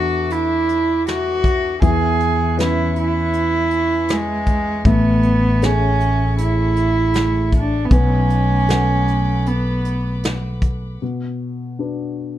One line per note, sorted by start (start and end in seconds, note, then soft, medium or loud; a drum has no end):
0.00 1.78 E2 medium
0.00 1.78 E3 medium
0.00 1.78 D4 soft
0.00 1.79 E4 soft
0.00 0.34 F#4 medium
0.00 1.78 A4 soft
0.00 1.79 B4 medium
0.00 7.88 E5 medium
0.00 1.80 A5 medium
0.00 1.79 D6 medium
0.30 1.07 E4 medium
0.30 closed hi-hat medium
0.69 closed hi-hat soft
1.07 1.80 F#4 medium
1.07 snare medium
1.07 closed hi-hat medium
1.44 kick medium
1.44 closed hi-hat soft
1.81 4.83 E2 medium
1.81 4.83 E3 medium
1.81 2.55 G#4 medium
1.81 4.83 B4 medium
1.81 7.87 G#5 medium
1.81 4.82 C#6 medium
1.81 kick medium
1.81 closed hi-hat medium
2.20 closed hi-hat soft
2.57 4.82 C#4 soft
2.57 4.82 E4 soft
2.57 2.95 E4 medium
2.57 4.82 B4 medium
2.57 snare medium
2.57 closed hi-hat medium
2.96 4.13 E4 medium
2.96 closed hi-hat soft
3.33 closed hi-hat medium
3.71 closed hi-hat soft
4.08 4.87 G#3 medium
4.08 snare medium
4.08 closed hi-hat medium
4.46 kick medium
4.46 closed hi-hat medium
4.83 7.87 A1 medium
4.83 10.95 A3 medium
4.83 7.88 A3 medium
4.83 7.87 C#6 medium
4.83 kick medium
4.83 closed hi-hat medium
4.88 5.66 B3 medium
5.23 closed hi-hat soft
5.62 6.40 C#4 medium
5.62 7.88 G#4 soft
5.62 7.88 A4 soft
5.62 7.88 C#5 soft
5.62 snare medium
5.62 closed hi-hat medium
6.00 closed hi-hat medium
6.38 7.50 E4 medium
6.38 closed hi-hat medium
6.76 closed hi-hat soft
7.14 snare medium
7.14 closed hi-hat medium
7.52 kick medium
7.52 closed hi-hat soft
7.57 7.87 D4 medium
7.85 7.94 B3 medium
7.90 10.96 B1 medium
7.90 10.97 B3 medium
7.90 9.49 C#4 medium
7.90 10.97 F#5 medium
7.90 10.97 B5 medium
7.90 10.97 D6 medium
7.90 kick medium
7.90 closed hi-hat medium
8.30 closed hi-hat soft
8.68 10.97 A4 soft
8.68 10.97 B4 soft
8.68 10.98 F#5 soft
8.68 snare medium
8.68 closed hi-hat medium
9.08 closed hi-hat soft
9.46 10.24 B3 medium
9.46 closed hi-hat medium
9.85 closed hi-hat soft
10.23 snare medium
10.23 closed hi-hat medium
10.62 kick medium
10.62 closed hi-hat soft
11.02 12.38 B2 soft
11.79 12.38 D4 soft
11.79 12.38 F#4 soft
11.79 12.38 B4 soft